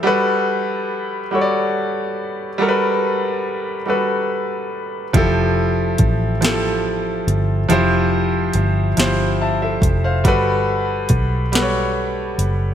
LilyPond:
<<
  \new Staff \with { instrumentName = "Grand piano" } { \time 6/8 \key g \dorian \tempo 4. = 47 << { r2. | r2. | r2. | r2 <e'' a''>16 <a' e''>8 <c'' f''>16~ |
<c'' f''>16 r2 r8. | } \\ { <g fis' a' b'>4. <g fis' a' des'' d''>4. | <g fis' a' bes' b'>4. <g fis' a' b'>4. | <f e' g' a'>4. <f e' g' a'>4. | <f e' g' c''>4. <f e' g' c''>4. |
<g fis' a' b'>4. <g fis' a' b' des''>4. | } >> }
  \new Staff \with { instrumentName = "Fingered electric bass" } { \clef bass \time 6/8 \key g \dorian r2. | r2. | f,,4 a,,4. g,,8 | f,,4 g,,8 g,,4 f,,8 |
g,,4 b,,4. fis,,8 | }
  \new DrumStaff \with { instrumentName = "Drums" } \drummode { \time 6/8 r4. r4. | r4. r4. | <hh bd>4 <hh bd>8 <hh sn>4 hh8 | hh4 hh8 <hh sn>4 <hh bd>8 |
<hh bd>4 <hh bd>8 <hh sn>4 hh8 | }
>>